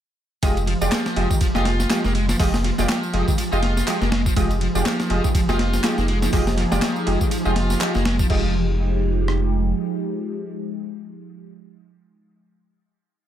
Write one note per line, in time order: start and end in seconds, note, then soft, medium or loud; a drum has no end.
0.42 0.75 F1 loud
0.42 0.57 G#3 loud
0.42 0.57 F4 medium
0.42 0.57 G4 medium
0.42 0.57 D#5 loud
0.42 kick loud
0.42 ride medium
0.42 tambourine medium
0.57 ride soft
0.57 tambourine soft
0.67 0.73 F3 medium
0.67 ride medium
0.81 0.89 F1 loud
0.81 0.92 G#3 loud
0.81 0.92 F4 medium
0.81 0.92 G4 medium
0.81 0.92 D5 loud
0.81 tambourine medium
0.91 1.29 F3 medium
0.91 snare loud
0.91 clap loud
0.91 ride medium
0.91 tambourine medium
1.06 snare medium
1.06 tambourine soft
1.16 1.26 F1 medium
1.16 1.31 G#3 medium
1.16 1.31 F4 medium
1.16 1.31 G4 medium
1.16 1.31 D#5 medium
1.16 ride medium
1.30 1.34 D#3 medium
1.30 kick medium
1.30 tambourine medium
1.41 1.52 F1 soft
1.41 1.46 F3 medium
1.41 kick loud
1.41 ride medium
1.41 tambourine medium
1.55 1.85 F1 loud
1.55 1.66 G#3 medium
1.55 1.89 F4 medium
1.55 1.66 F4 medium
1.55 1.66 G4 medium
1.55 1.66 D#5 loud
1.55 snare soft
1.55 tambourine soft
1.65 snare medium
1.65 ride medium
1.80 snare soft
1.80 tambourine medium
1.90 2.03 F3 medium
1.90 2.05 G#3 medium
1.90 2.05 F4 medium
1.90 2.05 G4 medium
1.90 2.05 D#5 medium
1.90 snare loud
1.90 clap loud
1.90 ride medium
1.90 tambourine medium
2.04 2.35 F1 loud
2.04 2.14 A#3 medium
2.04 snare soft
2.04 tambourine soft
2.15 2.24 G#3 loud
2.15 ride medium
2.29 2.36 F3 medium
2.29 snare medium
2.29 tambourine medium
2.39 2.72 F1 loud
2.39 2.54 G#3 loud
2.39 2.54 F4 medium
2.39 2.54 G4 medium
2.39 2.54 D#5 loud
2.39 kick loud
2.39 open hi-hat medium
2.39 tambourine medium
2.54 snare medium
2.54 tambourine soft
2.64 2.69 F3 medium
2.64 snare soft
2.64 ride medium
2.78 2.86 F1 loud
2.78 2.89 G#3 loud
2.78 2.89 F4 medium
2.78 2.89 G4 medium
2.78 2.89 D5 loud
2.78 snare soft
2.78 tambourine medium
2.88 3.26 F3 medium
2.88 snare loud
2.88 clap loud
2.88 ride medium
2.88 tambourine medium
3.03 tambourine soft
3.13 3.23 F1 medium
3.13 3.28 G#3 medium
3.13 3.28 F4 medium
3.13 3.28 G4 medium
3.13 3.28 D#5 medium
3.13 ride medium
3.28 3.32 D#3 medium
3.28 kick loud
3.28 tambourine medium
3.38 3.43 F3 medium
3.38 ride medium
3.38 tambourine medium
3.52 3.82 F1 loud
3.52 3.63 G#3 medium
3.52 3.86 F4 medium
3.52 3.63 F4 medium
3.52 3.63 G4 medium
3.52 3.63 D#5 loud
3.52 tambourine soft
3.63 snare soft
3.63 ride medium
3.77 snare soft
3.77 tambourine medium
3.87 4.00 F3 medium
3.87 4.02 G#3 medium
3.87 4.02 F4 medium
3.87 4.02 G4 medium
3.87 4.02 D#5 medium
3.87 clap loud
3.87 ride medium
3.87 tambourine medium
4.01 4.31 F1 loud
4.01 4.11 A#3 medium
4.01 snare soft
4.01 tambourine soft
4.12 4.21 G#3 loud
4.12 snare loud
4.12 ride medium
4.26 4.33 F3 medium
4.26 kick medium
4.26 tambourine medium
4.36 4.68 F1 loud
4.36 8.26 F3 medium
4.36 4.51 G#3 medium
4.36 8.26 D#4 medium
4.36 4.51 F4 medium
4.36 4.51 G4 medium
4.36 8.26 G4 medium
4.36 8.26 G#4 medium
4.36 4.51 D#5 loud
4.36 kick loud
4.36 ride medium
4.36 tambourine medium
4.51 ride soft
4.51 tambourine soft
4.61 4.67 F3 medium
4.61 ride medium
4.75 4.82 F1 loud
4.75 4.86 G#3 medium
4.75 4.86 F4 medium
4.75 4.86 G4 medium
4.75 4.86 D5 loud
4.75 tambourine medium
4.86 5.23 F3 medium
4.86 snare loud
4.86 clap loud
4.86 ride medium
4.86 tambourine medium
5.00 snare medium
5.00 tambourine soft
5.10 5.20 F1 medium
5.10 5.25 G#3 medium
5.10 5.25 F4 medium
5.10 5.25 G4 medium
5.10 5.25 D#5 medium
5.10 ride medium
5.24 5.28 D#3 medium
5.24 kick loud
5.24 tambourine medium
5.34 5.46 F1 soft
5.34 5.40 F3 medium
5.34 kick loud
5.34 ride medium
5.34 tambourine medium
5.49 5.79 F1 loud
5.49 5.60 G#3 loud
5.49 5.60 F4 medium
5.49 5.83 F4 medium
5.49 5.60 G4 medium
5.49 5.60 D#5 loud
5.49 snare soft
5.49 tambourine soft
5.59 snare medium
5.59 ride medium
5.73 snare soft
5.73 tambourine medium
5.84 5.97 F3 medium
5.84 5.98 G#3 medium
5.84 5.98 F4 medium
5.84 5.98 G4 medium
5.84 5.98 D#5 medium
5.84 snare loud
5.84 clap loud
5.84 ride medium
5.84 tambourine medium
5.98 6.28 F1 loud
5.98 6.08 A#3 medium
5.98 snare soft
5.98 tambourine soft
6.08 6.18 G#3 loud
6.08 ride medium
6.22 6.29 F3 medium
6.22 snare medium
6.22 tambourine medium
6.33 6.65 F1 loud
6.33 6.48 G#3 medium
6.33 6.48 F4 medium
6.33 6.48 G4 medium
6.33 6.48 D#5 loud
6.33 kick loud
6.33 open hi-hat medium
6.33 tambourine medium
6.47 snare medium
6.47 tambourine soft
6.57 6.63 F3 medium
6.57 snare soft
6.57 ride medium
6.71 6.79 F1 loud
6.71 6.83 G#3 loud
6.71 6.83 F4 medium
6.71 6.83 G4 medium
6.71 6.83 D5 loud
6.71 snare soft
6.71 tambourine medium
6.82 7.20 F3 medium
6.82 snare loud
6.82 clap loud
6.82 ride loud
6.82 tambourine medium
6.96 tambourine soft
7.07 7.17 F1 medium
7.07 7.21 G#3 medium
7.07 7.21 F4 medium
7.07 7.21 G4 medium
7.07 7.21 D#5 medium
7.07 ride medium
7.21 7.25 D#3 medium
7.21 kick loud
7.21 tambourine medium
7.31 7.37 F3 medium
7.31 ride medium
7.31 tambourine medium
7.45 7.76 F1 loud
7.45 7.56 G#3 loud
7.45 7.79 F4 medium
7.45 7.57 F4 medium
7.45 7.56 G4 medium
7.45 7.56 D#5 loud
7.45 tambourine soft
7.56 snare soft
7.56 ride medium
7.70 snare soft
7.70 tambourine medium
7.80 7.93 F3 medium
7.80 7.95 G#3 medium
7.80 7.95 F4 medium
7.80 7.95 G4 medium
7.80 7.95 D#5 medium
7.80 clap loud
7.80 ride medium
7.80 tambourine medium
7.94 8.25 F1 loud
7.94 8.05 A#3 medium
7.94 snare soft
7.94 tambourine soft
8.05 8.14 G#3 loud
8.05 snare loud
8.05 ride medium
8.19 8.26 F3 medium
8.19 kick loud
8.19 tambourine medium
8.30 9.73 F1 loud
8.30 12.16 F3 medium
8.30 8.53 F3 loud
8.30 12.16 G#3 medium
8.30 12.16 D#4 medium
8.30 12.16 F4 medium
8.30 12.16 G4 medium
8.30 12.16 D#5 medium
8.30 kick loud
8.30 crash medium
9.28 cross-stick medium